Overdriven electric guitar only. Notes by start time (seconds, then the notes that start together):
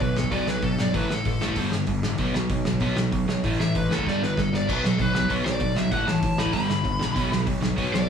0.01 B2 F#3
0.17 B2 F#3
0.31 B2 F#3 B3
0.47 B2 F#3
0.63 B2 F#3
0.79 B2 F#3
0.93 A2 E3 A3
1.11 A2 E3
1.26 A2 E3
1.41 A2 E3 A3
1.56 G2 D3 G3
1.73 G2 D3
1.88 G2 D3
2.04 G2 D3
2.19 B2 F#3 B3
2.34 B2 F#3
2.50 B2 F#3
2.67 B2 F#3
2.81 B2 F#3 B3
2.97 B2 F#3
3.12 B2 F#3
3.28 B2 F#3
3.44 A2 E3 A3
3.60 A2 E3
3.75 A2 E3
3.90 A2 E3 A3
4.06 G2 D3 G3
4.22 G2 D3
4.38 G2 D3
4.53 G2 D3
4.67 B2 F#3 B3
4.84 B2 F#3
4.98 B2 F#3
5.14 B2 F#3
5.29 B2 F#3 B3
5.45 B2 F#3
5.60 B2 F#3
5.76 B2 F#3
5.92 A2 E3 A3
6.07 A2 E3
6.24 A2 E3
6.38 A2 E3 A3
6.53 G2 D3 G3
6.68 G2 D3
6.84 G2 D3
6.99 G2 D3
7.15 B2 F#3 B3
7.31 B2 F#3
7.47 B2 F#3
7.61 B2 F#3
7.77 B2 F#3 B3
7.93 B2 F#3